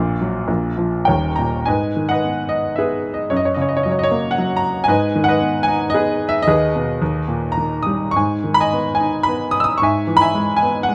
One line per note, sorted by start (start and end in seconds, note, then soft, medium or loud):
0.00 0.44 A#1 medium
0.00 0.46 A#2 medium
0.00 1.34 C5 medium
0.00 1.34 F5 medium
0.21 0.48 F#3 soft
0.47 1.03 A#1 medium
0.47 1.05 A#2 medium
0.77 1.07 F3 soft
1.05 1.66 D#2 medium
1.05 1.63 A#4 medium
1.05 1.63 C#5 medium
1.05 1.38 G5 medium
1.09 1.64 D#1 medium
1.36 1.67 A#2 soft
1.36 1.67 A#5 medium
1.66 3.27 G#2 medium
1.66 2.10 B4 soft
1.66 2.09 D#5 soft
1.66 2.06 G#5 medium
1.97 3.02 D#3 soft
2.09 2.77 B4 medium
2.09 2.47 D#5 medium
2.09 2.48 F#5 medium
2.24 2.76 B3 soft
2.49 2.78 D#5 medium
2.76 3.29 B3 soft
2.76 3.28 G#4 medium
2.76 3.27 B4 soft
2.76 3.18 E5 medium
3.14 3.28 D#5 medium
3.30 4.84 F#2 medium
3.30 3.38 C#5 medium
3.36 3.45 D#5 medium
3.45 3.54 C#5 medium
3.54 4.59 C#3 soft
3.54 3.62 D#5 medium
3.62 3.70 C#5 medium
3.69 3.77 D#5 medium
3.77 3.85 C#5 medium
3.83 4.37 F#3 soft
3.83 3.92 D#5 medium
3.92 4.00 C#5 medium
3.99 4.08 D#5 medium
4.04 4.32 C#5 medium
4.11 4.86 A#3 medium
4.31 4.60 F#5 medium
4.38 4.87 F#3 medium
4.57 4.86 A#5 medium
4.84 5.27 G#5 medium
4.88 6.43 G#2 medium
4.88 5.27 B4 medium
4.88 5.27 D#5 medium
5.15 6.18 D#3 medium
5.24 5.63 F#5 medium
5.28 5.94 B4 medium
5.28 5.88 D#5 medium
5.41 5.93 B3 medium
5.63 5.93 G#5 medium
5.68 6.45 D#4 medium
5.90 6.29 D#5 medium
5.94 6.46 B3 medium
5.94 6.43 G#4 medium
5.94 6.44 B4 medium
6.29 6.45 E5 medium
6.42 7.58 D#5 medium
6.47 6.99 D#2 medium
6.47 7.53 G#4 medium
6.47 7.53 B4 medium
6.75 7.01 B2 medium
7.02 8.12 D#2 medium
7.28 8.12 A#2 soft
7.52 7.84 A#5 medium
7.57 8.14 D#3 soft
7.83 8.14 G3 soft
7.83 8.14 D#6 medium
8.11 8.53 C#6 medium
8.16 9.78 G#2 medium
8.16 8.59 G#5 medium
8.44 9.52 D#3 soft
8.54 9.00 B5 medium
8.60 9.39 D#5 medium
8.60 8.93 G#5 medium
8.73 9.27 B3 soft
8.95 9.23 G#5 medium
9.00 9.80 D#4 soft
9.23 9.51 B5 medium
9.28 9.81 B3 soft
9.51 9.59 D#6 medium
9.60 9.79 D#6 medium
9.60 9.68 E6 medium
9.78 10.17 C#6 medium
9.82 10.95 G#2 medium
9.82 10.20 E5 medium
9.82 10.20 G#5 medium
10.07 10.95 E3 soft
10.17 10.56 B5 loud
10.21 10.95 E5 medium
10.21 10.55 G#5 medium
10.35 10.87 G#3 medium
10.57 10.84 G#5 medium
10.62 10.95 B3 medium
10.83 10.95 F#5 medium
10.88 10.95 G#3 medium